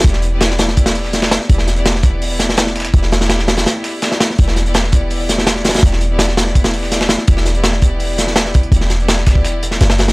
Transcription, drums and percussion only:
0.01 kick, snare, closed hi-hat
0.05 closed hi-hat
0.13 snare
0.22 closed hi-hat
0.41 snare, closed hi-hat
0.50 snare
0.59 snare, closed hi-hat
0.68 snare
0.77 kick, closed hi-hat
0.86 snare, closed hi-hat
0.95 closed hi-hat, open hi-hat
1.04 snare
1.13 snare, closed hi-hat
1.22 snare
1.31 snare, closed hi-hat
1.40 snare
1.49 kick, closed hi-hat
1.58 snare
1.67 snare, closed hi-hat
1.76 closed hi-hat
1.86 snare, closed hi-hat
1.95 snare
2.03 kick, closed hi-hat
2.22 closed hi-hat, open hi-hat
2.39 snare, closed hi-hat
2.49 snare
2.57 snare, closed hi-hat
2.67 snare
2.76 snare, closed hi-hat
2.80 snare, closed hi-hat
2.85 snare, closed hi-hat
2.94 kick, closed hi-hat
3.03 snare
3.12 snare, closed hi-hat
3.21 snare, closed hi-hat
3.29 snare, closed hi-hat
3.39 snare
3.48 snare, closed hi-hat
3.57 snare, closed hi-hat
3.66 snare, closed hi-hat
3.84 snare, closed hi-hat, open hi-hat
4.02 snare, closed hi-hat
4.12 snare
4.20 snare, closed hi-hat
4.30 snare
4.38 kick, closed hi-hat
4.48 snare
4.56 snare, closed hi-hat
4.66 closed hi-hat
4.74 snare, closed hi-hat
4.84 snare
4.92 kick, closed hi-hat
5.10 closed hi-hat, open hi-hat
5.29 snare, closed hi-hat
5.38 snare
5.47 snare, closed hi-hat
5.56 snare
5.64 snare, closed hi-hat
5.69 snare, closed hi-hat
5.74 snare, closed hi-hat
5.78 snare, closed hi-hat
5.83 kick, closed hi-hat
5.92 snare
6.01 closed hi-hat
6.19 snare, closed hi-hat
6.28 snare
6.37 snare, closed hi-hat
6.47 snare
6.55 kick, closed hi-hat
6.64 snare, closed hi-hat
6.73 closed hi-hat, open hi-hat
6.83 snare
6.91 snare, closed hi-hat
7.01 snare
7.09 snare, closed hi-hat
7.18 snare
7.27 kick, closed hi-hat
7.37 snare
7.45 snare, closed hi-hat
7.55 closed hi-hat
7.64 snare, closed hi-hat
7.73 snare
7.82 kick, closed hi-hat
8.00 closed hi-hat, open hi-hat
8.18 snare, closed hi-hat
8.27 snare
8.36 snare, closed hi-hat
8.46 snare
8.54 kick, closed hi-hat
8.63 closed hi-hat
8.72 kick, closed hi-hat
8.81 snare
8.90 snare, closed hi-hat
9.00 closed hi-hat
9.08 snare, closed hi-hat
9.17 snare
9.26 kick, snare, closed hi-hat
9.35 kick
9.45 snare, closed hi-hat
9.63 closed hi-hat
9.71 snare
9.81 snare, closed hi-hat
9.90 snare, closed hi-hat
9.98 snare, closed hi-hat
10.08 snare, closed hi-hat

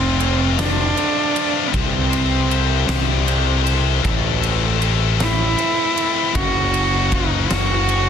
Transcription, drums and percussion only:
0.20 ride
0.59 snare, ride
0.97 ride
1.36 ride
1.74 kick, ride
2.13 ride
2.51 ride
2.89 snare, ride
3.28 ride
3.67 ride
4.05 kick, ride
4.43 ride
4.82 ride
5.20 snare, ride
5.58 ride
5.98 ride
6.35 kick, ride
6.74 ride
7.12 kick, ride
7.51 snare, ride
7.89 ride

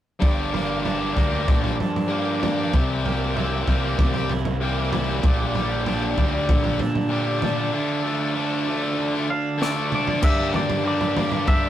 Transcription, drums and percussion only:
0.22 kick, floor tom
0.54 floor tom
0.85 floor tom
1.17 kick, floor tom
1.48 kick, floor tom, mid tom
1.64 floor tom
1.80 floor tom
1.96 floor tom
2.43 floor tom, mid tom
2.73 kick, floor tom
3.06 floor tom
3.37 floor tom
3.68 kick, floor tom
3.99 kick, floor tom, mid tom
4.14 floor tom
4.29 floor tom
4.45 floor tom
4.93 floor tom, mid tom
5.23 kick, floor tom
5.55 floor tom
5.86 floor tom
6.18 kick, floor tom
6.49 kick, floor tom, mid tom
6.64 floor tom
6.79 floor tom
6.95 floor tom
7.42 floor tom, mid tom
9.62 snare
9.92 mid tom
10.08 floor tom
10.22 kick, floor tom, crash
10.54 floor tom, mid tom
10.70 floor tom
11.01 floor tom
11.17 floor tom, mid tom
11.32 floor tom
11.47 kick, floor tom

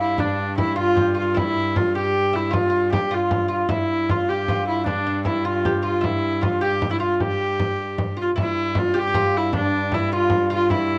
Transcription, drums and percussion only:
0.18 frame drum
0.39 frame drum
0.58 frame drum
0.97 frame drum
1.18 frame drum
1.37 frame drum
1.57 frame drum
1.76 frame drum
2.35 frame drum
2.53 frame drum
2.93 frame drum
3.31 frame drum
3.69 frame drum
3.90 frame drum
4.09 frame drum
4.48 frame drum
4.67 frame drum
4.86 frame drum
5.06 frame drum
5.25 frame drum
5.65 frame drum
6.04 frame drum
6.24 frame drum
6.43 frame drum
6.82 frame drum
7.02 frame drum
7.20 frame drum
7.59 frame drum
7.98 frame drum
8.38 frame drum
8.56 frame drum
8.75 frame drum
9.14 frame drum
9.34 frame drum
9.53 frame drum
9.74 frame drum
9.92 frame drum
10.30 frame drum
10.70 frame drum
10.90 frame drum

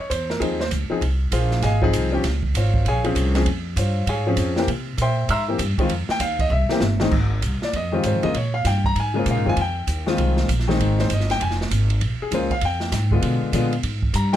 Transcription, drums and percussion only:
0.10 kick, hi-hat pedal, ride
0.30 snare
0.41 kick, ride
0.60 snare
0.71 kick, hi-hat pedal, ride
1.01 kick, ride
1.32 kick, hi-hat pedal, ride
1.51 snare
1.62 kick, snare, ride
1.82 kick
1.93 kick, hi-hat pedal, ride
2.23 kick, snare, ride
2.43 kick
2.54 kick, hi-hat pedal, ride
2.74 kick
2.85 kick, ride
3.04 ride
3.15 kick, hi-hat pedal, ride
3.35 snare, ride
3.46 kick, ride
3.76 kick, hi-hat pedal, ride
4.07 kick, ride
4.37 kick, hi-hat pedal, ride
4.56 snare
4.68 kick, ride
4.98 kick, hi-hat pedal, ride
5.28 kick, ride
5.59 kick, hi-hat pedal, ride
5.78 kick, ride
5.89 kick, ride
6.09 snare
6.20 kick, hi-hat pedal, ride
6.39 kick, ride
6.69 snare
6.81 snare, hi-hat pedal
7.00 snare
7.11 kick, crash
7.42 kick, hi-hat pedal, ride
7.62 snare
7.73 kick, ride
8.03 kick, hi-hat pedal, ride
8.23 ride
8.34 kick, ride
8.65 kick, snare, hi-hat pedal, ride
8.84 kick
8.96 kick, ride
9.26 kick, hi-hat pedal, ride
9.57 kick, ride
9.87 kick, hi-hat pedal, ride
10.07 snare
10.18 kick, ride
10.37 snare
10.49 kick, hi-hat pedal, ride
10.59 snare
10.70 snare
10.79 kick, ride
10.99 snare
11.10 kick, hi-hat pedal, ride
11.20 snare
11.30 snare, ride
11.40 kick, ride
11.51 snare
11.61 snare
11.71 kick, hi-hat pedal, ride
11.90 ride
12.01 kick, ride
12.31 kick, hi-hat pedal, ride
12.50 kick, ride
12.61 kick, ride
12.80 snare
12.92 kick, snare, hi-hat pedal, ride
13.11 kick
13.22 kick, ride
13.53 kick, hi-hat pedal, ride
13.73 ride
13.83 kick, ride
14.02 kick
14.14 kick, hi-hat pedal, ride

